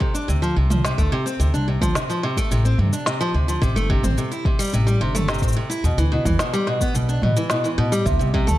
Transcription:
0.00 steel-string acoustic guitar C3, kick
0.14 steel-string acoustic guitar D4, cabasa
0.28 upright bass D2, steel-string acoustic guitar C3, cabasa
0.42 steel-string acoustic guitar F3, cabasa
0.56 upright bass C2, steel-string acoustic guitar C3
0.70 steel-string acoustic guitar F3, mid tom, cabasa
0.84 steel-string acoustic guitar C3, snare, cabasa
0.98 upright bass D2, steel-string acoustic guitar A3, kick, cabasa
1.12 steel-string acoustic guitar C3
1.26 steel-string acoustic guitar C4, cabasa
1.39 upright bass D2, steel-string acoustic guitar C3, cabasa
1.54 upright bass C2, steel-string acoustic guitar D4, cabasa
1.68 steel-string acoustic guitar C3
1.81 upright bass D2, steel-string acoustic guitar F3, kick, mid tom, cabasa
1.95 steel-string acoustic guitar C3, snare, cabasa
2.10 steel-string acoustic guitar F3, cabasa
2.23 steel-string acoustic guitar C3, snare
2.37 steel-string acoustic guitar A3, kick, cabasa
2.51 upright bass A1, steel-string acoustic guitar C3, cabasa
2.65 steel-string acoustic guitar C4, cabasa
2.78 upright bass G2, steel-string acoustic guitar C3, mid tom
2.93 steel-string acoustic guitar D4, cabasa
3.06 steel-string acoustic guitar C3, snare, cabasa
3.21 steel-string acoustic guitar F3, cabasa
3.34 upright bass D2, steel-string acoustic guitar C3
3.48 steel-string acoustic guitar F3, cabasa
3.62 upright bass A1, steel-string acoustic guitar C3, kick, cabasa
3.76 upright bass G1, steel-string acoustic guitar A3, cabasa
3.90 steel-string acoustic guitar C3, kick
4.03 upright bass A1, steel-string acoustic guitar C4, mid tom, cabasa
4.18 steel-string acoustic guitar C3, cabasa
4.32 steel-string acoustic guitar E4, cabasa
4.45 steel-string acoustic guitar C3, kick
4.59 steel-string acoustic guitar G3, cabasa
4.62 cabasa
4.64 cabasa
4.67 cabasa
4.69 cabasa
4.72 upright bass A1, steel-string acoustic guitar C3, cabasa
4.74 cabasa
4.87 steel-string acoustic guitar G3, cabasa
5.01 upright bass G1, steel-string acoustic guitar C3
5.15 steel-string acoustic guitar A3, mid tom, cabasa
5.28 steel-string acoustic guitar C3, snare, cabasa
5.34 cabasa
5.39 upright bass A1, steel-string acoustic guitar C4, kick, cabasa
5.43 cabasa
5.48 cabasa
5.52 cabasa
5.56 steel-string acoustic guitar C3
5.70 steel-string acoustic guitar E4, cabasa
5.84 upright bass E2, steel-string acoustic guitar B2, cabasa
5.97 upright bass D2, steel-string acoustic guitar E3, cabasa
6.12 steel-string acoustic guitar B2
6.25 upright bass E2, steel-string acoustic guitar E3, kick, mid tom, cabasa
6.39 steel-string acoustic guitar B2, snare, cabasa
6.53 steel-string acoustic guitar G3, cabasa
6.67 steel-string acoustic guitar B2, snare
6.81 steel-string acoustic guitar B3, kick, cabasa
6.94 upright bass B1, steel-string acoustic guitar B2, cabasa
7.09 steel-string acoustic guitar D4, cabasa
7.22 upright bass A2, steel-string acoustic guitar B2, mid tom
7.37 steel-string acoustic guitar E3, cabasa
7.50 steel-string acoustic guitar B2, snare, cabasa
7.64 steel-string acoustic guitar E3, cabasa
7.78 upright bass A2, steel-string acoustic guitar B2
7.92 steel-string acoustic guitar G3, cabasa
8.06 upright bass D2, steel-string acoustic guitar C3, celesta E5, kick, cabasa
8.19 upright bass C2, steel-string acoustic guitar C3, cabasa
8.34 steel-string acoustic guitar C3, kick
8.47 upright bass D2, steel-string acoustic guitar A3, celesta A5, mid tom, cabasa

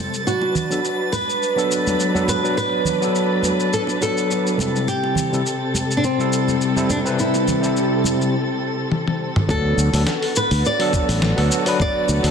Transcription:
Already playing: string section C3 G3 C4 A4, synth texture A6
0.14 shaker
0.27 string section F#3 D4 B4, nylon-string guitar F#4, shaker
0.42 high bongo
0.55 low conga, shaker
0.70 tine electric piano F#3 B3 D4 A4, shaker
0.85 shaker
1.12 nylon-string guitar B4, high conga, shaker
1.30 shaker
1.43 shaker
1.56 tine electric piano F#3 B3 D4 A4, shaker
1.72 shaker
1.87 high conga, shaker
2.00 shaker
2.14 tine electric piano F#3 B3 D4 A4, high conga, shaker
2.28 nylon-string guitar B4, high conga, shaker
2.43 tine electric piano F#3 B3 D4 B4, shaker
2.57 nylon-string guitar B4, shaker
2.85 low conga, shaker
3.00 tine electric piano F#3 B3 D4, shaker
3.04 tine electric piano A4
3.15 shaker
3.43 high conga, shaker
3.60 shaker
3.73 nylon-string guitar A4, shaker
3.87 high bongo, shaker
4.01 tine electric piano F#3 B3 D4 A4, nylon-string guitar A4, shaker
4.18 shaker
4.31 shaker
4.47 shaker
4.57 tine electric piano C3 G3 C4 E4, high conga, shaker
4.62 tine electric piano A4
4.76 shaker
4.88 string section C3 G3 C4 A4, nylon-string guitar G4, shaker
5.04 high bongo
5.15 low conga, shaker
5.32 tine electric piano C3 G3 C4 E4 A4, shaker
5.46 shaker
5.74 high conga, shaker
5.91 shaker
5.97 nylon-string guitar D4
6.04 nylon-string guitar C4, shaker
6.18 tine electric piano C3 G3 C4 E4 A4, shaker
6.33 shaker
6.48 high conga, shaker
6.61 shaker
6.76 tine electric piano C3 G3 C4 E4 A4, high conga, shaker
6.90 nylon-string guitar D4, high conga, shaker
7.04 tine electric piano C3 G3 C4 E4 B4, shaker
7.19 nylon-string guitar E4, shaker
7.34 high bongo, shaker
7.48 low conga, shaker
7.60 tine electric piano C3 G3 C4 E4, shaker
7.65 tine electric piano A4
7.77 shaker
8.04 high conga, shaker
8.21 shaker
8.92 high tom
9.08 high tom
9.36 mid tom
9.48 fretless electric bass D2, string section D3 B3 F#4, tine electric piano F#3 B3 D4 A4, nylon-string guitar A4, synth texture A6, kick, shaker
9.77 fretless electric bass D2, shaker
9.93 fretless electric bass D2, tine electric piano F#3 B3 D4 A4, open hi-hat, shaker
10.07 snare, shaker
10.23 open hi-hat
10.36 nylon-string guitar B4, shaker
10.51 fretless electric bass D2, open hi-hat, shaker
10.65 nylon-string guitar D5, shaker
10.79 tine electric piano F#3 B3 D4 A4, open hi-hat
10.93 kick, shaker
11.09 fretless electric bass A1, open hi-hat, shaker
11.22 snare, shaker
11.36 fretless electric bass D2, tine electric piano F#3 B3 D4 A4, open hi-hat
11.52 shaker
11.66 tine electric piano F#3 B3 D4 B4, open hi-hat, shaker
11.80 nylon-string guitar D5, kick, shaker
12.09 fretless electric bass D2, shaker
12.23 fretless electric bass D2, tine electric piano F#3 B3 D4, open hi-hat, shaker
12.27 tine electric piano A4

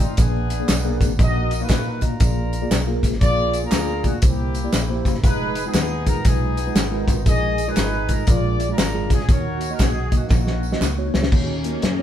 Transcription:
Already playing: horn section C4 D#4
0.00 tine electric piano A3 D#4 F4 D5, horn section F4
0.17 fingered electric bass A#1, tine electric piano A#2 A#3 D4 G#4 B4, horn section B3 D4 G#4, kick, closed hi-hat, tambourine
0.50 closed hi-hat, tambourine
0.60 tine electric piano A#3 D4 G#4 D5
0.68 fingered electric bass B1, snare, clap, closed hi-hat, tambourine
0.84 tine electric piano A#3 D4 G#4 A#4
1.01 fingered electric bass G#1, kick, snare, closed hi-hat, tambourine
1.19 fingered electric bass A#1, tine electric piano A#2 A#3 D#4 F#4 D#5, horn section F#4 A#4 D#5, kick, closed hi-hat, tambourine
1.51 closed hi-hat, tambourine
1.61 tine electric piano A#3 D#4 F#4 F5, horn section D#4 F#4 B4
1.69 fingered electric bass A#2, kick, snare, clap, closed hi-hat, tambourine
2.01 tine electric piano A#3 D#4 F#4 D#5, horn section D4 F4, kick, closed hi-hat, tambourine
2.05 horn section A#4
2.20 fingered electric bass A#1, tine electric piano A#2 A#3 F4 G#4 D5, kick, closed hi-hat, tambourine
2.53 closed hi-hat, tambourine
2.62 tine electric piano A#3 F4 G#4 D5
2.70 fingered electric bass B1, snare, clap, closed hi-hat, tambourine
2.87 tine electric piano A#3 F4 G#4 A#4
3.03 fingered electric bass G#1, kick, snare, closed hi-hat, tambourine
3.13 snare
3.21 fingered electric bass A#1, tine electric piano A#3 F4 G#4 A#4, horn section F4 G#4 D5, kick, closed hi-hat, tambourine
3.54 closed hi-hat, tambourine
3.63 tine electric piano A#3 F4 G#4 A#4, horn section D4 F4 A#4
3.71 fingered electric bass D2, snare, clap, closed hi-hat, tambourine
4.04 tine electric piano A#3 F4 G#4 D5, horn section F#4, kick, closed hi-hat, tambourine
4.22 fingered electric bass C2, tine electric piano C3 A#3 E4 G4 C5, horn section A#3 E4 G4, kick, closed hi-hat, tambourine
4.54 closed hi-hat, tambourine
4.64 tine electric piano A#3 E4 G4 D5
4.73 fingered electric bass A#1, snare, clap, closed hi-hat, tambourine
4.89 tine electric piano A#3 E4 G4 C5
5.05 fingered electric bass F#1, kick, snare, closed hi-hat, tambourine
5.15 snare
5.23 fingered electric bass F1, tine electric piano G#3 D#4 F4 B4, horn section D#4 G#4 B4, kick, closed hi-hat, tambourine
5.55 closed hi-hat, tambourine
5.65 tine electric piano G#3 D#4 F4 B4, horn section B3 D#4 G#4
5.74 fingered electric bass D#2, snare, clap, closed hi-hat, tambourine
6.06 tine electric piano G#3 D#4 F4 G#4, horn section A#4, kick, closed hi-hat, tambourine
6.25 fingered electric bass B1, tine electric piano G#3 D#4 F4 B4, horn section B3 D#4 G#4, kick, closed hi-hat, tambourine
6.57 closed hi-hat, tambourine
6.67 tine electric piano G#3 D#4 F4 B4
6.75 fingered electric bass G#1, snare, clap, closed hi-hat, tambourine
6.91 tine electric piano G#3 D#4 F4 A#4
7.07 fingered electric bass G#1, kick, snare, closed hi-hat, tambourine
7.26 fingered electric bass A#1, tine electric piano A#2 G#3 D#4 F4 A#4, horn section G#4 D#5, kick, closed hi-hat, tambourine
7.58 closed hi-hat, tambourine
7.68 tine electric piano G#3 D#4 F4 A#4, horn section D#4 G#4 B4
7.76 fingered electric bass G#1, snare, clap, closed hi-hat, tambourine
8.09 tine electric piano G#3 D#4 F4 A#4, horn section A#4, kick, closed hi-hat, tambourine
8.27 fingered electric bass A#1, tine electric piano A#2 G#3 D4 F4 A#4, horn section F4 G#4 D5, kick, closed hi-hat, tambourine
8.60 closed hi-hat, tambourine
8.69 tine electric piano G#3 D4 F4 G#4, horn section D4 F4 A#4
8.78 fingered electric bass G#1, snare, clap, closed hi-hat, tambourine
8.94 tine electric piano G#3 D4 F4 G#4
9.10 horn section G#4, kick, snare, closed hi-hat, tambourine
9.19 snare
9.29 fingered electric bass D#2, tine electric piano D#3 A#3 D#4 F#4 C#5, horn section F#4 A#4 C#5, kick, closed hi-hat, tambourine
9.61 closed hi-hat, tambourine
9.70 tine electric piano A#3 D#4 F#4 D#5, horn section A#4
9.79 fingered electric bass B1, horn section G#4, kick, snare, clap, closed hi-hat, tambourine
10.12 tine electric piano A#3 D#4 F#4 D#5, horn section A#3 C#4 F#4, kick, closed hi-hat, tambourine
10.30 fingered electric bass A#1, tine electric piano A#3 D#4 F#4 D#5, kick, snare, tambourine
10.47 snare
10.63 tambourine
10.72 tine electric piano A#3 D#4 F#4 D#5, snare
10.81 fingered electric bass C#2, snare, clap, tambourine
10.98 tine electric piano A#3 D#4 F#4 C#5
11.14 fingered electric bass C#2, snare, tambourine
11.23 snare
11.32 fingered electric bass D#2, string section D#3 F#3 A#3 C#4, tine electric piano D#3 A#3 D#4 F#4 C#5, kick, crash
11.64 tine electric piano A#3 D#4 F#4 A#4, closed hi-hat
11.82 fingered electric bass F#2, snare, closed hi-hat
11.99 tine electric piano A#3 D#4 F#4 C#5

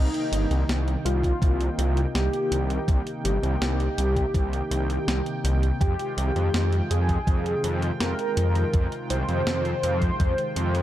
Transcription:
Already playing: analog synth pad C3 D#3 A#3 D#4 G5, analog synth lead D#4
0.14 closed hi-hat
0.32 detuned saw bass G1, closed hi-hat
0.50 detuned saw bass C2, closed hi-hat
0.69 detuned saw bass C2, snare, closed hi-hat
0.88 closed hi-hat
1.05 detuned saw bass C2, analog synth lead F4, closed hi-hat
1.24 kick, closed hi-hat
1.42 detuned saw bass C2, kick, closed hi-hat
1.61 closed hi-hat
1.78 detuned saw bass C2, closed hi-hat
1.97 closed hi-hat
2.15 detuned saw bass C2, analog synth lead G4, snare, closed hi-hat
2.33 closed hi-hat
2.51 detuned saw bass C2, closed hi-hat
2.70 closed hi-hat
2.88 detuned saw bass C2, kick, closed hi-hat
3.07 closed hi-hat
3.24 detuned saw bass G1, analog synth lead G4, closed hi-hat
3.43 detuned saw bass C2, closed hi-hat
3.61 detuned saw bass C2, snare, closed hi-hat
3.80 closed hi-hat
3.98 detuned saw bass C2, closed hi-hat
4.16 kick, closed hi-hat
4.34 detuned saw bass C2, kick, closed hi-hat
4.53 closed hi-hat
4.71 detuned saw bass C2, closed hi-hat
4.90 closed hi-hat
5.08 detuned saw bass C2, snare, closed hi-hat
5.26 closed hi-hat
5.44 detuned saw bass C2, closed hi-hat
5.63 closed hi-hat
5.81 detuned saw bass F2, analog synth pad G#3 F4, analog synth lead G4, kick, closed hi-hat
5.99 closed hi-hat
6.17 detuned saw bass C2, closed hi-hat
6.36 detuned saw bass F2, closed hi-hat
6.54 detuned saw bass F2, snare, closed hi-hat
6.73 closed hi-hat
6.91 detuned saw bass F2, analog synth lead G#4, closed hi-hat
7.09 kick, closed hi-hat
7.27 detuned saw bass F2, kick, closed hi-hat
7.46 closed hi-hat
7.64 detuned saw bass F2, closed hi-hat
7.82 closed hi-hat
8.00 detuned saw bass F2, analog synth lead A#4, snare, closed hi-hat
8.19 closed hi-hat
8.37 detuned saw bass F2, closed hi-hat
8.55 closed hi-hat
8.74 detuned saw bass F2, kick, closed hi-hat
8.92 closed hi-hat
9.10 detuned saw bass C2, analog synth lead C5, closed hi-hat
9.28 detuned saw bass F2, closed hi-hat
9.47 detuned saw bass F2, snare, closed hi-hat
9.65 closed hi-hat
9.83 detuned saw bass F2, closed hi-hat
10.02 kick, closed hi-hat
10.20 detuned saw bass F2, kick, closed hi-hat
10.38 closed hi-hat
10.56 detuned saw bass F2, closed hi-hat
10.75 closed hi-hat

